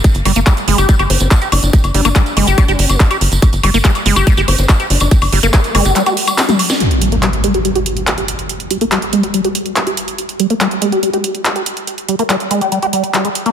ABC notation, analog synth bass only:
X:1
M:4/4
L:1/16
Q:1/4=142
K:Gphr
V:1 name="Analog synth bass" clef=bass
z G,,, G,,, G,,, z2 G,,, G,,, z G,,, G,,, G,,, z2 G,,, G,,, | z G,,, G,,, G,,, z2 G,,, G,,, z G,,, G,,, G,,, z2 G,,, G,,, | z G,,, G,,, G,,, z2 G,,, G,,, z G,,, G,,, G,,, z2 G,,, G,,, | z G,,, G,,, G,,, z2 G,,, G,,, z8 |
z16 | z16 | z16 | z16 |]